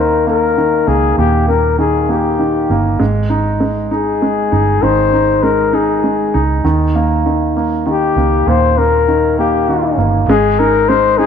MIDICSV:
0, 0, Header, 1, 4, 480
1, 0, Start_track
1, 0, Key_signature, -4, "major"
1, 0, Tempo, 606673
1, 934, Time_signature, 6, 3, 24, 8
1, 8911, End_track
2, 0, Start_track
2, 0, Title_t, "Flugelhorn"
2, 0, Program_c, 0, 56
2, 0, Note_on_c, 0, 70, 71
2, 217, Note_off_c, 0, 70, 0
2, 224, Note_on_c, 0, 70, 66
2, 693, Note_on_c, 0, 68, 67
2, 705, Note_off_c, 0, 70, 0
2, 930, Note_off_c, 0, 68, 0
2, 934, Note_on_c, 0, 67, 69
2, 1158, Note_off_c, 0, 67, 0
2, 1171, Note_on_c, 0, 70, 70
2, 1396, Note_off_c, 0, 70, 0
2, 1416, Note_on_c, 0, 68, 68
2, 1665, Note_on_c, 0, 67, 59
2, 1677, Note_off_c, 0, 68, 0
2, 2201, Note_off_c, 0, 67, 0
2, 3115, Note_on_c, 0, 68, 69
2, 3820, Note_on_c, 0, 72, 85
2, 3832, Note_off_c, 0, 68, 0
2, 4295, Note_on_c, 0, 70, 75
2, 4307, Note_off_c, 0, 72, 0
2, 4546, Note_on_c, 0, 68, 64
2, 4558, Note_off_c, 0, 70, 0
2, 5082, Note_off_c, 0, 68, 0
2, 6235, Note_on_c, 0, 67, 74
2, 6710, Note_on_c, 0, 72, 80
2, 6722, Note_off_c, 0, 67, 0
2, 6946, Note_on_c, 0, 70, 84
2, 6958, Note_off_c, 0, 72, 0
2, 7419, Note_off_c, 0, 70, 0
2, 7429, Note_on_c, 0, 67, 58
2, 7929, Note_off_c, 0, 67, 0
2, 8140, Note_on_c, 0, 68, 81
2, 8377, Note_on_c, 0, 70, 86
2, 8389, Note_off_c, 0, 68, 0
2, 8610, Note_on_c, 0, 72, 91
2, 8621, Note_off_c, 0, 70, 0
2, 8846, Note_on_c, 0, 68, 82
2, 8857, Note_off_c, 0, 72, 0
2, 8911, Note_off_c, 0, 68, 0
2, 8911, End_track
3, 0, Start_track
3, 0, Title_t, "Grand piano"
3, 0, Program_c, 1, 0
3, 0, Control_c, 1, 64, 127
3, 0, Note_on_c, 1, 51, 39
3, 0, Note_on_c, 1, 58, 43
3, 201, Note_off_c, 1, 58, 0
3, 213, Note_on_c, 1, 58, 42
3, 443, Note_off_c, 1, 51, 0
3, 455, Note_on_c, 1, 51, 42
3, 676, Note_off_c, 1, 58, 0
3, 688, Note_on_c, 1, 58, 42
3, 938, Note_on_c, 1, 46, 50
3, 1164, Note_off_c, 1, 58, 0
3, 1175, Note_on_c, 1, 58, 41
3, 1387, Note_off_c, 1, 51, 0
3, 1412, Note_on_c, 1, 51, 40
3, 1641, Note_off_c, 1, 58, 0
3, 1653, Note_on_c, 1, 58, 43
3, 1881, Note_off_c, 1, 51, 0
3, 1893, Note_on_c, 1, 51, 40
3, 2129, Note_off_c, 1, 58, 0
3, 2140, Note_on_c, 1, 58, 42
3, 2346, Note_off_c, 1, 46, 0
3, 2360, Note_off_c, 1, 51, 0
3, 2370, Note_on_c, 1, 56, 53
3, 2371, Note_off_c, 1, 58, 0
3, 2387, Control_c, 1, 64, 0
3, 2536, Control_c, 1, 64, 127
3, 2610, Note_on_c, 1, 63, 41
3, 2840, Note_off_c, 1, 56, 0
3, 2852, Note_on_c, 1, 56, 39
3, 3084, Note_off_c, 1, 63, 0
3, 3096, Note_on_c, 1, 63, 43
3, 3329, Note_off_c, 1, 56, 0
3, 3341, Note_on_c, 1, 56, 40
3, 3564, Note_off_c, 1, 63, 0
3, 3576, Note_on_c, 1, 63, 44
3, 3818, Note_on_c, 1, 51, 53
3, 4050, Note_off_c, 1, 63, 0
3, 4062, Note_on_c, 1, 63, 43
3, 4271, Note_off_c, 1, 56, 0
3, 4297, Note_on_c, 1, 56, 41
3, 4522, Note_off_c, 1, 63, 0
3, 4533, Note_on_c, 1, 63, 45
3, 4765, Note_off_c, 1, 56, 0
3, 4776, Note_on_c, 1, 56, 41
3, 5005, Note_off_c, 1, 63, 0
3, 5017, Note_on_c, 1, 63, 46
3, 5226, Note_off_c, 1, 51, 0
3, 5242, Note_off_c, 1, 56, 0
3, 5250, Note_off_c, 1, 63, 0
3, 5258, Note_on_c, 1, 51, 56
3, 5268, Control_c, 1, 64, 0
3, 5421, Control_c, 1, 64, 127
3, 5502, Note_on_c, 1, 58, 44
3, 5731, Note_off_c, 1, 51, 0
3, 5743, Note_on_c, 1, 51, 38
3, 5974, Note_off_c, 1, 58, 0
3, 5986, Note_on_c, 1, 58, 45
3, 6210, Note_off_c, 1, 51, 0
3, 6222, Note_on_c, 1, 51, 42
3, 6455, Note_off_c, 1, 58, 0
3, 6467, Note_on_c, 1, 58, 42
3, 6706, Note_on_c, 1, 46, 53
3, 6929, Note_off_c, 1, 58, 0
3, 6941, Note_on_c, 1, 58, 41
3, 7149, Note_off_c, 1, 51, 0
3, 7185, Note_on_c, 1, 51, 41
3, 7417, Note_off_c, 1, 58, 0
3, 7429, Note_on_c, 1, 58, 40
3, 7653, Note_off_c, 1, 51, 0
3, 7665, Note_on_c, 1, 51, 40
3, 7888, Note_off_c, 1, 58, 0
3, 7900, Note_on_c, 1, 58, 42
3, 8106, Note_off_c, 1, 46, 0
3, 8124, Note_off_c, 1, 51, 0
3, 8129, Note_off_c, 1, 58, 0
3, 8143, Control_c, 1, 64, 0
3, 8145, Note_on_c, 1, 56, 67
3, 8289, Control_c, 1, 64, 127
3, 8384, Note_on_c, 1, 63, 53
3, 8607, Note_off_c, 1, 56, 0
3, 8619, Note_on_c, 1, 56, 49
3, 8841, Note_off_c, 1, 63, 0
3, 8853, Note_on_c, 1, 63, 51
3, 8911, Note_off_c, 1, 56, 0
3, 8911, Note_off_c, 1, 63, 0
3, 8911, End_track
4, 0, Start_track
4, 0, Title_t, "Fingered electric bass"
4, 0, Program_c, 2, 33
4, 0, Note_on_c, 2, 39, 70
4, 659, Note_off_c, 2, 39, 0
4, 693, Note_on_c, 2, 37, 63
4, 919, Note_off_c, 2, 37, 0
4, 931, Note_on_c, 2, 39, 70
4, 2103, Note_off_c, 2, 39, 0
4, 2134, Note_on_c, 2, 31, 62
4, 2361, Note_off_c, 2, 31, 0
4, 2377, Note_on_c, 2, 32, 74
4, 3546, Note_off_c, 2, 32, 0
4, 3581, Note_on_c, 2, 31, 70
4, 3805, Note_off_c, 2, 31, 0
4, 3818, Note_on_c, 2, 32, 77
4, 4986, Note_off_c, 2, 32, 0
4, 5022, Note_on_c, 2, 37, 73
4, 5245, Note_off_c, 2, 37, 0
4, 5256, Note_on_c, 2, 39, 78
4, 6423, Note_off_c, 2, 39, 0
4, 6457, Note_on_c, 2, 37, 62
4, 6682, Note_off_c, 2, 37, 0
4, 6697, Note_on_c, 2, 39, 75
4, 7862, Note_off_c, 2, 39, 0
4, 7893, Note_on_c, 2, 31, 60
4, 8118, Note_off_c, 2, 31, 0
4, 8133, Note_on_c, 2, 32, 91
4, 8911, Note_off_c, 2, 32, 0
4, 8911, End_track
0, 0, End_of_file